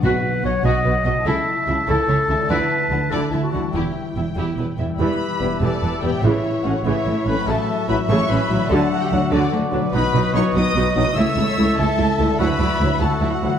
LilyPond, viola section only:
\new Staff \with { instrumentName = "Viola section" } { \time 6/8 \key e \dorian \tempo 4. = 97 fis'8 r8 fis'8 fis'8 fis'8 fis'8 | e'8 r8 e'8 e'8 e'8 e'8 | e'8 r8 e'8 e'8 e'8 e'8 | e'8 r8 e'8 e'8 e'8 e'8 |
<e g>8 r8 <g e'>8 <e g>8 <e b>8 <g e'>8 | <cis e>8 r8 <a cis'>8 <cis e>8 <e a>8 <a cis'>8 | <cis a>8 r8 <fis e'>8 <cis a>8 <e cis'>8 <fis e'>8 | <d fis>8 r8 <fis d'>8 <d fis>8 <d a>8 <fis d'>8 |
<fis dis'>8 <fis dis'>8 <fis dis'>8 <fis dis'>8 <fis dis'>8 <fis dis'>8 | <a e'>8 <a e'>8 <a e'>8 <a e'>8 <a e'>8 <a e'>8 | <fis e'>8 <fis e'>8 <fis e'>8 <fis e'>8 <fis e'>8 <fis e'>8 | }